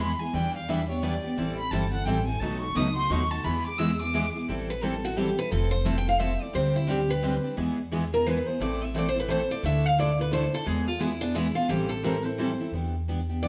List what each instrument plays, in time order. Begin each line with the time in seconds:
Already playing: upright bass E2
0.00 steel-string acoustic guitar E3 G#3 B3 E4 G#4, violin B5
0.19 steel-string acoustic guitar B3 E4 G#4, violin G#5
0.33 upright bass E2, steel-string acoustic guitar E3 G3 B3 D4 E4 G4 B4, violin G5
0.56 violin F5
0.68 steel-string acoustic guitar E3 G3 B3 D4 E4 G4 B4, violin E5
0.89 steel-string acoustic guitar B3 D4 G4, violin C#5
1.03 steel-string acoustic guitar E3 G3 B3 D4 E4 G4 B4, violin D5
1.24 steel-string acoustic guitar B3 D4 G4
1.37 upright bass A1, steel-string acoustic guitar E3 G3 C4 E4 A4
1.57 violin B5
1.71 upright bass G1, steel-string acoustic guitar E3 G3 C4 E4 A4, violin A5
1.93 steel-string acoustic guitar C4 E4 A4, violin F#5
2.05 upright bass A1, steel-string acoustic guitar E3 G3 C4 E4 A4, violin G5
2.26 steel-string acoustic guitar C4 E4 A4, violin G#5
2.40 upright bass B1, steel-string acoustic guitar B2 F#3 A3 D#4 F#4 B4, violin A5
2.61 violin C#6
2.75 upright bass C#2, steel-string acoustic guitar B2 F#3 A3 D#4 F#4 B4, violin D#6
2.95 steel-string acoustic guitar A3 D#4 F#4, violin C6
3.10 upright bass D#2, steel-string acoustic guitar B2 F#3 A3 D#4 F#4 B4, violin C#6
3.31 steel-string acoustic guitar A3 D#4 F#4, violin A5
3.44 upright bass E2, steel-string acoustic guitar E3 G#3 B3 E4 G#4, violin B5
3.66 violin D6
3.78 steel-string acoustic guitar E3 G#3 B3 E4 G#4, violin E6
4.00 steel-string acoustic guitar B3 E4 G#4, violin D6
4.14 steel-string acoustic guitar E3 G#3 B3 E4 G#4
4.34 steel-string acoustic guitar B3 E4 G#4
4.48 upright bass A1, steel-string acoustic guitar E3 G3 C4 E4 A4
4.70 steel-string acoustic guitar B4
4.83 steel-string acoustic guitar E3 G3 C4 E4 A4
5.04 steel-string acoustic guitar C4 E4 F#4 A4
5.16 steel-string acoustic guitar E3 G3 C4 E4 G4 A4
5.38 steel-string acoustic guitar C4 E4 A4 B4
5.51 upright bass F1, steel-string acoustic guitar F3 A3 C4 E4 A4
5.71 steel-string acoustic guitar C5
5.85 steel-string acoustic guitar F3 A3 C4 E4 A4 E5
5.98 steel-string acoustic guitar G5
6.07 steel-string acoustic guitar C4 E4 A4 F5
6.19 steel-string acoustic guitar F3 A3 C4 E4 A4 E5
6.41 steel-string acoustic guitar C4 E4 A4 D5
6.54 upright bass D2, steel-string acoustic guitar D3 G3 C4 D4 G4 C5
6.76 steel-string acoustic guitar E4
6.88 steel-string acoustic guitar D3 G3 C4 D4 G4
7.09 steel-string acoustic guitar C4 D4 G4 B4
7.22 steel-string acoustic guitar D3 G3 C4 D4 G4
7.44 steel-string acoustic guitar C4 D4 G4
7.57 upright bass E2, steel-string acoustic guitar E3 G#3 B3 E4 G#4
7.91 steel-string acoustic guitar E3 G#3 B3 E4 G#4
8.12 steel-string acoustic guitar B3 E4 G#4 A#4
8.26 steel-string acoustic guitar E3 G#3 B3 E4 G#4 B4
8.47 steel-string acoustic guitar B3 E4 G#4 C5
8.60 upright bass A1, steel-string acoustic guitar E3 A3 C4 E4 A4 D5
8.84 steel-string acoustic guitar E5
8.94 steel-string acoustic guitar E3 A3 C4 E4 A4 D5
9.09 steel-string acoustic guitar C5
9.14 steel-string acoustic guitar C4 E4 A4
9.20 steel-string acoustic guitar B4
9.28 steel-string acoustic guitar E3 A3 C4 E4 A4 C5
9.50 steel-string acoustic guitar C4 E4 A4 D5
9.63 upright bass D2, steel-string acoustic guitar D3 A3 D4 E4 A4 E5
9.86 steel-string acoustic guitar F5
9.98 steel-string acoustic guitar D3 A3 D4 E4 A4 D5
10.18 steel-string acoustic guitar D4 E4 A4 B4
10.31 steel-string acoustic guitar D3 A3 D4 E4 A4 C5
10.52 steel-string acoustic guitar D4 E4 A4
10.66 upright bass E2, steel-string acoustic guitar E3 G#3 B3 E4 G#4
10.88 steel-string acoustic guitar F4
10.99 steel-string acoustic guitar E3 G#3 B3 E4 G#4
11.21 steel-string acoustic guitar B3 D4 E4 G#4
11.35 steel-string acoustic guitar E3 G#3 B3 E4 G#4
11.54 steel-string acoustic guitar B3 E4 F4 G#4
11.69 upright bass A1, steel-string acoustic guitar E3 G3 C4 E4 G4 A4
11.89 steel-string acoustic guitar A4
12.04 steel-string acoustic guitar E3 G3 C4 E4 A4 A#4
12.24 steel-string acoustic guitar C4 E4 A4 C5
12.39 steel-string acoustic guitar E3 G3 C4 E4 A4
12.59 steel-string acoustic guitar C4 E4 A4
12.72 upright bass E2, steel-string acoustic guitar E3 B3 D4 G4
13.08 steel-string acoustic guitar E3 B3 D4 G4
13.29 steel-string acoustic guitar B3 D4 G4
13.42 steel-string acoustic guitar E3 B3 D4 G4 D5